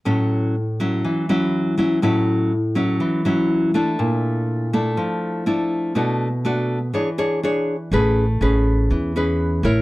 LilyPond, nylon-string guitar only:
\new Staff \with { instrumentName = "Nylon-string guitar" } { \time 4/4 \key a \major \tempo 4 = 122 << { <fis cis' e'>4 r8 <fis cis' e'>4 <fis cis' e'>4 <fis cis' e'>8 | <fis cis' e'>4 r8 <fis cis' e'>4 <fis cis' e'>4 <a d' e'>8~ | <a d' e'>4. <a d' e'>4. <a d' e'>4 | <a d' fis'>8 r8 <a d' fis'>8 r8 <d' gis' cis''>8 <d' gis' cis''>8 <d' gis' cis''>8 r8 |
<cis' gis' b'>8 r8 <cis' gis' b'>4. <cis' gis' b'>4 <e' bes' cis''>8 | } \\ { a,2 e2 | a,2 e2 | bes,2 f2 | b,2 e2 |
a2 e2 | } >> }